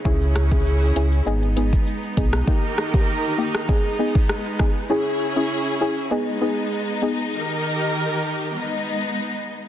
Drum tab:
HH |--x---x---x---x-|----------------|----------------|----------------|
SH |xxxxxxxxxxxxxxxx|----------------|----------------|----------------|
SD |--r------------r|--r----r----r-r-|----------------|----------------|
BD |o--o-------o--o-|o--o----o--o--o-|----------------|----------------|